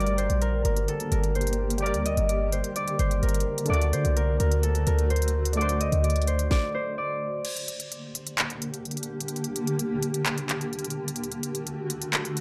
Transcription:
Already playing: G1 D3 G3 A#3 G4 A#4 C5 D5
0.00 D5, closed hi-hat
0.07 closed hi-hat
0.18 C5, closed hi-hat
0.30 A#1, closed hi-hat
0.42 A#4, closed hi-hat
0.65 G1 A#4, closed hi-hat
0.77 closed hi-hat
0.88 A4, closed hi-hat
1.00 closed hi-hat
1.12 G1 A#4, closed hi-hat
1.24 closed hi-hat
1.35 C5, closed hi-hat
1.41 closed hi-hat
1.47 closed hi-hat
1.53 closed hi-hat
1.70 closed hi-hat
1.78 G3 G4, closed hi-hat
1.82 A#4 D5, closed hi-hat
1.87 D5
1.94 D2, closed hi-hat
2.06 D#5, closed hi-hat
2.17 G1, closed hi-hat
2.29 D5, closed hi-hat
2.52 C5, closed hi-hat
2.64 closed hi-hat
2.76 D5, closed hi-hat
2.88 closed hi-hat
2.99 G1 C5, closed hi-hat
3.11 closed hi-hat
3.23 G1 A#4, closed hi-hat
3.29 closed hi-hat
3.35 closed hi-hat
3.40 closed hi-hat
3.58 closed hi-hat
3.65 D3 A3, closed hi-hat
3.70 D2 A3 F#4 D5, closed hi-hat
3.74 D5
3.82 closed hi-hat
3.93 D3 C5, closed hi-hat
4.05 C2, closed hi-hat
4.16 A#4, closed hi-hat
4.40 D2 A#4, closed hi-hat
4.52 closed hi-hat
4.63 A4, closed hi-hat
4.75 closed hi-hat
4.87 D2 A#4, closed hi-hat
4.99 closed hi-hat
5.10 C5, closed hi-hat
5.16 closed hi-hat
5.22 closed hi-hat
5.28 closed hi-hat
5.45 closed hi-hat
5.53 D3 A3, closed hi-hat
5.57 F#4 D5
5.61 C5, closed hi-hat
5.69 closed hi-hat
5.81 D#5, closed hi-hat
5.92 D2, closed hi-hat
6.04 D5, closed hi-hat
6.10 closed hi-hat
6.16 closed hi-hat
6.22 closed hi-hat
6.27 C5, closed hi-hat
6.39 closed hi-hat
6.51 D5, kick, snare
6.75 C5
6.98 D5
7.45 D3 A#3 G4, closed hi-hat, crash
7.57 closed hi-hat
7.68 closed hi-hat
7.80 closed hi-hat
7.92 closed hi-hat
8.15 closed hi-hat
8.27 closed hi-hat
8.38 clap, closed hi-hat
8.50 closed hi-hat
8.62 closed hi-hat
8.74 closed hi-hat
8.85 closed hi-hat
8.91 closed hi-hat
8.97 closed hi-hat
9.03 closed hi-hat
9.21 closed hi-hat
9.28 closed hi-hat
9.36 closed hi-hat
9.44 closed hi-hat
9.56 closed hi-hat
9.67 closed hi-hat
9.79 closed hi-hat
10.03 closed hi-hat
10.14 closed hi-hat
10.26 clap, closed hi-hat
10.38 closed hi-hat
10.49 clap, closed hi-hat
10.61 closed hi-hat
10.73 closed hi-hat
10.79 closed hi-hat
10.85 closed hi-hat
10.90 closed hi-hat
11.08 closed hi-hat
11.16 D3 A3, closed hi-hat
11.20 F#4, closed hi-hat
11.32 closed hi-hat
11.43 closed hi-hat
11.55 closed hi-hat
11.67 closed hi-hat
11.90 closed hi-hat
12.02 closed hi-hat
12.13 clap, closed hi-hat
12.25 closed hi-hat
12.37 closed hi-hat

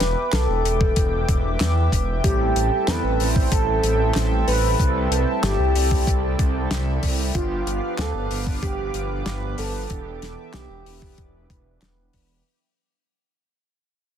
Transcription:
Already playing: B4 E5 G5 D6
0.00 E1, snare, closed hi-hat
0.33 B1 A4, snare, clap, closed hi-hat
0.49 E1
0.65 E1, closed hi-hat
0.81 kick
0.96 E1, kick, closed hi-hat
1.29 E1, kick, closed hi-hat
1.60 E2, snare, clap, closed hi-hat
1.92 E1, kick, closed hi-hat
2.24 A1 G3 C4 E4 G4 A4 A5, kick, closed hi-hat
2.56 A1, closed hi-hat
2.88 E2 B4, snare, clap, closed hi-hat
3.04 A1
3.20 A1 G3 C4 E4 C5, open hi-hat
3.36 kick
3.52 A1 A4, kick, closed hi-hat
3.84 A1, closed hi-hat
4.14 A1, snare, clap, closed hi-hat
4.48 A1 B4, open hi-hat
4.79 C2 G3 C4 E4 A4, kick, closed hi-hat
5.11 C2, closed hi-hat
5.43 G1 G4, snare, clap, closed hi-hat
5.59 C2
5.75 C2 G3 C4 E4 D5, open hi-hat
5.91 kick
6.07 C2, kick, closed hi-hat
6.39 C2, kick, closed hi-hat
6.71 C2, snare, clap, closed hi-hat
7.03 C2, kick, open hi-hat
7.35 G1 F3 B3 D4 F4 G4 B4 F5 D6, kick, closed hi-hat
7.67 G1, closed hi-hat
7.98 D2 A4, snare, clap, closed hi-hat
8.15 G1
8.31 G1 F3 B3 D4 B4, open hi-hat
8.47 kick
8.62 G1 G4, kick, closed hi-hat
8.94 G1, closed hi-hat
9.26 G1, snare, clap, closed hi-hat
9.58 G1 A4, open hi-hat
9.90 E1 E3 B3 D4 G4 E5 D6, kick, closed hi-hat
10.22 E1, snare, closed hi-hat
10.54 B1 G4, snare, clap, closed hi-hat
10.70 E1
10.86 E1 E3 B3 D4 B4, open hi-hat
11.02 kick
11.18 E1, kick, closed hi-hat
11.50 E1, kick, closed hi-hat
11.81 E1, snare, clap, closed hi-hat
12.13 E1, kick, open hi-hat

